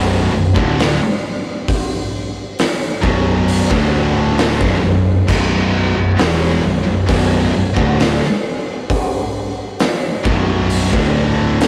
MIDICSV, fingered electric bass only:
0, 0, Header, 1, 2, 480
1, 0, Start_track
1, 0, Key_signature, 2, "minor"
1, 0, Tempo, 902256
1, 894, Time_signature, 4, 2, 24, 8
1, 6212, End_track
2, 0, Start_track
2, 0, Title_t, "Fingered electric bass"
2, 0, Program_c, 0, 33
2, 0, Note_on_c, 0, 23, 94
2, 160, Note_off_c, 0, 23, 0
2, 174, Note_on_c, 0, 23, 78
2, 286, Note_off_c, 0, 23, 0
2, 296, Note_on_c, 0, 26, 100
2, 519, Note_off_c, 0, 26, 0
2, 1614, Note_on_c, 0, 23, 102
2, 1952, Note_off_c, 0, 23, 0
2, 1972, Note_on_c, 0, 26, 96
2, 2431, Note_off_c, 0, 26, 0
2, 2453, Note_on_c, 0, 23, 99
2, 2564, Note_off_c, 0, 23, 0
2, 2570, Note_on_c, 0, 23, 80
2, 2794, Note_off_c, 0, 23, 0
2, 2809, Note_on_c, 0, 23, 116
2, 3149, Note_off_c, 0, 23, 0
2, 3169, Note_on_c, 0, 23, 84
2, 3282, Note_off_c, 0, 23, 0
2, 3289, Note_on_c, 0, 28, 101
2, 3514, Note_off_c, 0, 28, 0
2, 3532, Note_on_c, 0, 23, 87
2, 3644, Note_off_c, 0, 23, 0
2, 3654, Note_on_c, 0, 23, 85
2, 3765, Note_off_c, 0, 23, 0
2, 3769, Note_on_c, 0, 23, 89
2, 3994, Note_off_c, 0, 23, 0
2, 4017, Note_on_c, 0, 23, 77
2, 4127, Note_off_c, 0, 23, 0
2, 4132, Note_on_c, 0, 26, 102
2, 4356, Note_off_c, 0, 26, 0
2, 5456, Note_on_c, 0, 23, 99
2, 5794, Note_off_c, 0, 23, 0
2, 5816, Note_on_c, 0, 26, 94
2, 6212, Note_off_c, 0, 26, 0
2, 6212, End_track
0, 0, End_of_file